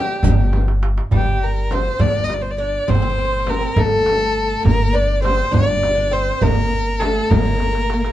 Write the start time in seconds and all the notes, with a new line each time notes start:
Already playing: G3 G4
0.23 G1, riq, frame drum, darbuka dum
0.53 darbuka tek, frame drum
0.68 darbuka ka
0.83 darbuka tek
0.98 darbuka ka
1.11 G1 G3, darbuka dum, frame drum
1.15 G4
1.43 A#4
1.71 C4 C5, darbuka tek, frame drum
1.99 G1 D4 D5, frame drum, darbuka dum
2.24 D#5
2.29 darbuka tek, frame drum
2.34 D5
2.42 C5
2.51 D5
2.58 D4 D5, darbuka ka
2.88 G1 C4 C5, frame drum, darbuka dum
2.95 C4
3.02 C4
3.10 C4
3.18 C4
3.25 C4
3.33 C4
3.39 C4
3.46 C4 A#4, darbuka tek, frame drum
3.53 C4
3.61 C4
3.76 G1 A3 A4, darbuka dum, frame drum
4.06 darbuka tek, frame drum
4.37 darbuka ka
4.63 G1 A#3, frame drum, darbuka dum
4.67 A#4
4.93 D4 D5
5.22 C4 C5, darbuka tek, frame drum
5.51 G1 D4 D5, frame drum, darbuka dum
5.83 darbuka tek, frame drum
5.95 D4
6.11 C4 C5, darbuka ka
6.41 G1 A#3 A#4, darbuka dum, frame drum
6.86 darbuka ka
7.00 A3 A4, darbuka tek, frame drum
7.29 G1 A#3 A#4, darbuka dum, frame drum
7.38 A#3
7.45 A#3
7.54 A#3
7.60 A#3, darbuka tek, frame drum
7.73 A#3, darbuka ka
7.81 A#3
7.85 A#3
7.90 A#3, darbuka tek
8.00 A#3, darbuka ka
8.06 A#3